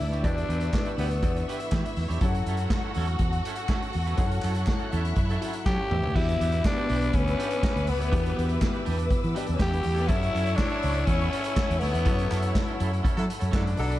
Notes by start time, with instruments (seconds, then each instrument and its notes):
Already playing: grand piano E3 B3 E4 G4 D5, string section D4 B4 D5 E5 D6 E6, tenor saxophone E4
0.01 fingered electric bass D2
0.12 clean electric guitar D4 G4 C#5, closed hi-hat
0.23 fingered electric bass E2, grand piano E3 B3 F#4 G4 D5, tenor saxophone D4, clean electric guitar D4 G4 B4, string section C#6, kick, closed hi-hat
0.36 muted clean electric guitar stroke, closed hi-hat
0.48 fingered electric bass E2, clean electric guitar D4 G4 B4, closed hi-hat
0.61 clean electric guitar G4 B4, closed hi-hat
0.73 kick, snare, clap
0.85 clean electric guitar D4 G4 B4, closed hi-hat
0.97 fingered electric bass D2, tenor saxophone B3, clean electric guitar D4 G4 B4, open hi-hat
1.10 muted clean electric guitar stroke, closed hi-hat
1.23 fingered electric bass E2, muted clean electric guitar stroke, kick, closed hi-hat
1.36 muted clean electric guitar stroke, closed hi-hat
1.47 clean electric guitar D4 G4 B4, string section E4 E5, closed hi-hat
1.60 muted clean electric guitar stroke, closed hi-hat
1.72 fingered electric bass E3, clean electric guitar D4 G4 B4, kick, snare, clap
1.85 muted clean electric guitar stroke, closed hi-hat
1.96 fingered electric bass E2, muted clean electric guitar stroke, snare, open hi-hat
2.08 fingered electric bass E2, clean electric guitar D4 G4 C#5, closed hi-hat
2.21 fingered electric bass F#2, grand piano F#3 C#4 E4 G4 F#5, clean electric guitar C#4 E4 A4, string section F#4 A4 F#5 C#6, kick, closed hi-hat
2.29 grand piano A4
2.35 muted clean electric guitar stroke, closed hi-hat
2.46 fingered electric bass F#2, clean electric guitar C#4 E4 A4, closed hi-hat
2.57 clean electric guitar E4 A4, closed hi-hat
2.61 clean electric guitar C#4
2.70 kick, snare, clap
2.81 clean electric guitar A4, closed hi-hat
2.86 clean electric guitar C#4 E4
2.94 fingered electric bass E2, clean electric guitar C#4 E4 A4, open hi-hat
3.07 muted clean electric guitar stroke, closed hi-hat
3.19 fingered electric bass E2, muted clean electric guitar stroke, kick, closed hi-hat
3.33 muted clean electric guitar stroke, closed hi-hat
3.45 clean electric guitar C#4 E4 A4, closed hi-hat
3.56 muted clean electric guitar stroke, closed hi-hat
3.69 clean electric guitar C#4 E4 A4, kick, snare, clap
3.80 muted clean electric guitar stroke, closed hi-hat
3.93 fingered electric bass E2, open hi-hat
4.06 clean electric guitar C#4 E4 B4, closed hi-hat
4.16 fingered electric bass F#2, grand piano F#3 C#4 E4 A4 F#5, clean electric guitar C#4 E4 A4, string section F#6, kick, closed hi-hat
4.30 muted clean electric guitar stroke, closed hi-hat
4.42 fingered electric bass F#2, clean electric guitar C#4 E4 A4, clap, closed hi-hat
4.55 clean electric guitar C#4 E4 A4, closed hi-hat
4.66 muted clean electric guitar stroke, kick, snare, clap
4.79 clean electric guitar C#4 E4 A4, closed hi-hat
4.92 fingered electric bass E2, clean electric guitar C#4 E4 A4, string section E4 E5, closed hi-hat
5.05 muted clean electric guitar stroke, closed hi-hat
5.16 fingered electric bass F#2, muted clean electric guitar stroke, kick, closed hi-hat
5.30 clean electric guitar C#4 E4 A4, closed hi-hat
5.41 grand piano F#3 C#4 E4 A4 F#5, clean electric guitar C#4 E4 A4, closed hi-hat
5.53 muted clean electric guitar stroke, closed hi-hat
5.66 fingered electric bass F#3, clean electric guitar C#4 E4 A4, tenor saxophone G4, grand piano C#5, kick, snare, clap
5.80 muted clean electric guitar stroke
5.91 fingered electric bass E2, string section B4 G5 D6 E6, grand piano E5, muted clean electric guitar stroke, mid tom
6.03 fingered electric bass D2, clean electric guitar D4 G4 C#5, floor tom
6.15 fingered electric bass E2, grand piano E3 B3 F#4 G4 E5, string section B3 B4 E5 D6 E6, clean electric guitar D4 G4 B4, tenor saxophone E4, kick, crash
6.28 muted clean electric guitar stroke, closed hi-hat
6.41 fingered electric bass E2, clean electric guitar D4 G4 B4, closed hi-hat
6.52 clean electric guitar D4 G4 B4, closed hi-hat
6.65 tenor saxophone D4, muted clean electric guitar stroke, kick, snare, clap
6.76 clean electric guitar D4 G4 B4, closed hi-hat
6.89 fingered electric bass B1, clean electric guitar D4 G4 B4, open hi-hat
7.02 muted clean electric guitar stroke, closed hi-hat
7.13 fingered electric bass D2, tenor saxophone C#4, muted clean electric guitar stroke, kick, closed hi-hat
7.26 muted clean electric guitar stroke, closed hi-hat
7.38 clean electric guitar D4 G4 B4, closed hi-hat
7.50 muted clean electric guitar stroke, closed hi-hat
7.62 clean electric guitar D4 G4 B4, kick, snare, clap
7.74 fingered electric bass D2, muted clean electric guitar stroke, closed hi-hat
7.87 fingered electric bass C#2, tenor saxophone B3, muted clean electric guitar stroke, open hi-hat
8.00 fingered electric bass D2, clean electric guitar D4 G4 C#5, closed hi-hat
8.12 fingered electric bass E2, grand piano E3 B3 F#4 G4 A#4, clean electric guitar D4 G4 B4, kick, closed hi-hat
8.21 grand piano B4, muted clean electric guitar stroke
8.26 closed hi-hat
8.36 fingered electric bass E2, clean electric guitar D4 G4 B4, closed hi-hat
8.48 clean electric guitar D4 G4 B4, closed hi-hat
8.60 muted clean electric guitar stroke, kick, snare, clap
8.73 clean electric guitar D4 G4 B4, closed hi-hat
8.85 fingered electric bass E2, clean electric guitar D4 G4 B4, open hi-hat
8.98 muted clean electric guitar stroke, closed hi-hat
9.09 muted clean electric guitar stroke, kick, closed hi-hat
9.22 fingered electric bass E3, muted clean electric guitar stroke, closed hi-hat
9.34 grand piano E3 B3 E4 G4 D5, clean electric guitar D4 G4 B4, closed hi-hat
9.47 fingered electric bass E2, muted clean electric guitar stroke, closed hi-hat
9.53 string section C#3 C#4
9.59 fingered electric bass E2, string section D3 D4, clean electric guitar D4 G4 B4, tenor saxophone G4, kick, snare, clap
9.69 string section E3 E4, muted clean electric guitar stroke
9.73 closed hi-hat
9.78 string section F#3 F#4
9.83 fingered electric bass E2, string section G3 G4, open hi-hat
9.93 string section A3 A4, clean electric guitar D4 G4 C#5
9.98 string section B3 B4, closed hi-hat
10.08 fingered electric bass F#2, grand piano F#3 E4 A4 C#5 F#5, clean electric guitar C#4 E4 A4, tenor saxophone E4, string section E4 A4 C#5 F#5 C#6, kick, closed hi-hat
10.21 muted clean electric guitar stroke, closed hi-hat
10.33 fingered electric bass F#2, clean electric guitar C#4 E4 A4, closed hi-hat
10.46 clean electric guitar C#4 E4 A4, closed hi-hat
10.56 tenor saxophone D4, muted clean electric guitar stroke, kick, snare, clap
10.70 clean electric guitar C#4 E4 A4, closed hi-hat
10.82 fingered electric bass C#2, clean electric guitar C#4 E4 A4, open hi-hat
10.94 muted clean electric guitar stroke, closed hi-hat
11.06 fingered electric bass E2, tenor saxophone C#4, muted clean electric guitar stroke, kick, closed hi-hat
11.20 muted clean electric guitar stroke, closed hi-hat
11.31 clean electric guitar C#4 E4 A4, closed hi-hat
11.43 muted clean electric guitar stroke, closed hi-hat
11.55 clean electric guitar C#4 E4 A4, kick, snare, clap
11.68 fingered electric bass E2, muted clean electric guitar stroke, closed hi-hat
11.79 fingered electric bass D2, tenor saxophone B3, snare, open hi-hat
11.93 fingered electric bass E2, clean electric guitar C#4 E4 B4, closed hi-hat
12.05 fingered electric bass F#2, grand piano F#3 C#4 E4 A4 F#5, clean electric guitar C#4 E4 A4, string section B5, kick, closed hi-hat
12.18 muted clean electric guitar stroke, closed hi-hat
12.30 fingered electric bass F#2, clean electric guitar C#4 E4 A4, clap, closed hi-hat
12.42 clean electric guitar C#4 E4 A4, closed hi-hat
12.55 muted clean electric guitar stroke, kick, snare, clap
12.67 clean electric guitar C#4 E4 A4, closed hi-hat
12.80 fingered electric bass F#2, clean electric guitar C#4 E4 A4, closed hi-hat
12.92 muted clean electric guitar stroke, closed hi-hat
13.03 clean electric guitar C#4 E4 A4, kick, closed hi-hat
13.16 horn section F#3 E4 A4, fingered electric bass F#3, muted clean electric guitar stroke, closed hi-hat
13.28 muted clean electric guitar stroke, closed hi-hat
13.40 fingered electric bass F#2, clean electric guitar C#4 E4 A4, closed hi-hat
13.51 fingered electric bass F#2, horn section F#3 E4 A4, clean electric guitar C#4 E4 A4, tenor saxophone D4, kick, snare, clap
13.66 muted clean electric guitar stroke, closed hi-hat
13.76 fingered electric bass B1, grand piano B2 B3 D4 A4 D5, horn section F#3 D4 A4, string section D4 D5 D6, muted clean electric guitar stroke, open hi-hat
13.90 clean electric guitar D4 F#4 B4, closed hi-hat